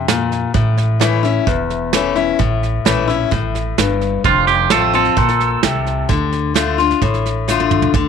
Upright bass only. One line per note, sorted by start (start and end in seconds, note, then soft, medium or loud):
0.00 0.44 F2 medium
0.55 1.37 A1 medium
1.47 2.29 E1 medium
2.39 2.80 A1 medium
2.86 3.25 A#1 medium
3.32 3.71 A1 medium
3.78 4.18 G1 medium
4.24 4.65 F1 medium
4.71 5.10 A1 medium
5.17 5.56 A#1 medium
5.63 6.02 C2 medium
6.09 6.92 D2 medium
7.02 7.84 A1 medium
7.94 8.08 D2 medium